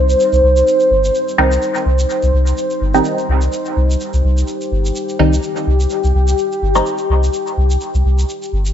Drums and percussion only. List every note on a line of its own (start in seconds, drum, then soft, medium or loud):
0.10 shaker medium
0.20 shaker medium
0.33 shaker soft
0.57 shaker medium
0.67 shaker medium
0.80 shaker soft
1.04 shaker medium
1.15 shaker medium
1.28 shaker soft
1.52 shaker medium
1.62 shaker medium
1.75 shaker soft
1.99 shaker medium
2.10 shaker medium
2.23 shaker soft
2.47 shaker medium
2.57 shaker medium
2.70 shaker soft
2.95 shaker medium
3.04 shaker medium
3.19 shaker soft
3.42 shaker medium
3.52 shaker medium
3.65 shaker soft
3.91 shaker medium
4.01 shaker medium
4.13 shaker soft
4.38 shaker medium
4.47 shaker medium
4.61 shaker soft
4.85 shaker medium
4.95 shaker medium
5.09 shaker soft
5.33 shaker medium
5.43 shaker medium
5.56 shaker soft
5.80 shaker medium
5.90 shaker medium
6.04 shaker soft
6.28 shaker medium
6.38 shaker medium
6.52 shaker soft
6.75 shaker medium
6.86 shaker medium
6.98 shaker soft
7.24 shaker medium
7.33 shaker medium
7.47 shaker soft
7.70 shaker medium
7.81 shaker medium
7.95 shaker soft
8.19 shaker medium
8.29 shaker medium
8.43 shaker soft
8.66 shaker medium